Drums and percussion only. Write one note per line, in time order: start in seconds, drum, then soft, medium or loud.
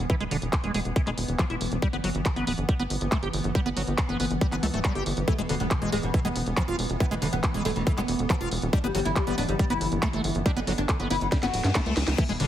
0.10 kick loud
0.10 closed hi-hat medium
0.20 closed hi-hat medium
0.31 open hi-hat loud
0.42 closed hi-hat soft
0.53 kick loud
0.53 clap loud
0.53 closed hi-hat medium
0.64 closed hi-hat medium
0.74 open hi-hat loud
0.85 closed hi-hat medium
0.96 kick loud
0.96 closed hi-hat medium
1.07 clap soft
1.07 closed hi-hat medium
1.18 open hi-hat loud
1.28 closed hi-hat medium
1.39 kick loud
1.39 clap loud
1.39 closed hi-hat medium
1.50 closed hi-hat medium
1.61 open hi-hat loud
1.72 closed hi-hat medium
1.82 kick loud
1.82 closed hi-hat medium
1.93 closed hi-hat medium
2.04 open hi-hat loud
2.15 closed hi-hat medium
2.26 kick loud
2.26 clap loud
2.26 closed hi-hat medium
2.36 closed hi-hat medium
2.47 open hi-hat loud
2.58 closed hi-hat soft
2.69 kick loud
2.69 closed hi-hat medium
2.79 closed hi-hat medium
2.90 open hi-hat loud
3.01 closed hi-hat medium
3.12 kick loud
3.12 clap loud
3.12 closed hi-hat medium
3.23 closed hi-hat medium
3.33 open hi-hat loud
3.44 closed hi-hat soft
3.55 kick loud
3.55 closed hi-hat medium
3.66 closed hi-hat soft
3.77 open hi-hat loud
3.87 closed hi-hat medium
3.98 kick loud
3.98 clap loud
3.98 closed hi-hat medium
4.09 closed hi-hat soft
4.20 open hi-hat loud
4.31 closed hi-hat soft
4.41 kick loud
4.41 closed hi-hat medium
4.52 clap soft
4.52 closed hi-hat medium
4.63 open hi-hat loud
4.74 closed hi-hat soft
4.85 kick loud
4.85 clap loud
4.85 closed hi-hat medium
4.95 closed hi-hat medium
5.06 open hi-hat medium
5.17 closed hi-hat soft
5.28 kick loud
5.28 closed hi-hat medium
5.38 closed hi-hat medium
5.49 open hi-hat loud
5.60 closed hi-hat soft
5.71 kick loud
5.71 clap loud
5.71 closed hi-hat medium
5.82 closed hi-hat soft
5.92 open hi-hat medium
6.03 closed hi-hat soft
6.14 kick loud
6.14 closed hi-hat medium
6.25 closed hi-hat soft
6.36 open hi-hat loud
6.46 closed hi-hat medium
6.57 kick loud
6.57 clap loud
6.57 closed hi-hat medium
6.68 closed hi-hat medium
6.79 open hi-hat medium
6.90 closed hi-hat soft
7.00 kick loud
7.00 closed hi-hat medium
7.11 closed hi-hat medium
7.22 open hi-hat loud
7.33 closed hi-hat medium
7.44 kick loud
7.44 clap loud
7.44 closed hi-hat medium
7.54 closed hi-hat medium
7.65 open hi-hat medium
7.76 closed hi-hat medium
7.87 kick loud
7.87 closed hi-hat medium
7.97 clap soft
7.97 closed hi-hat medium
8.08 open hi-hat loud
8.19 closed hi-hat medium
8.30 kick loud
8.30 clap loud
8.30 closed hi-hat medium
8.41 closed hi-hat medium
8.51 open hi-hat medium
8.62 closed hi-hat medium
8.73 kick loud
8.73 closed hi-hat medium
8.84 closed hi-hat medium
8.95 open hi-hat loud
9.05 closed hi-hat medium
9.16 kick loud
9.16 clap loud
9.16 closed hi-hat medium
9.27 closed hi-hat medium
9.38 open hi-hat medium
9.49 closed hi-hat medium
9.59 kick loud
9.59 closed hi-hat medium
9.70 closed hi-hat medium
9.81 open hi-hat loud
9.92 closed hi-hat medium
10.03 kick loud
10.03 clap loud
10.03 closed hi-hat medium
10.13 closed hi-hat medium
10.24 open hi-hat medium
10.35 closed hi-hat medium
10.46 kick loud
10.46 closed hi-hat medium
10.57 closed hi-hat medium
10.67 open hi-hat loud
10.78 closed hi-hat medium
10.89 kick loud
10.89 clap loud
10.89 closed hi-hat medium
11.00 closed hi-hat medium
11.10 open hi-hat medium
11.21 closed hi-hat medium
11.32 kick loud
11.32 snare medium
11.32 closed hi-hat medium
11.43 snare medium
11.43 closed hi-hat medium
11.54 open hi-hat loud
11.64 snare medium
11.64 closed hi-hat medium
11.75 kick loud
11.75 snare medium
11.75 clap loud
11.75 closed hi-hat medium
11.86 closed hi-hat medium
11.97 snare loud
11.97 open hi-hat medium
12.08 snare medium
12.08 closed hi-hat medium
12.18 kick loud
12.18 closed hi-hat medium
12.18 crash loud
12.29 closed hi-hat soft
12.40 open hi-hat loud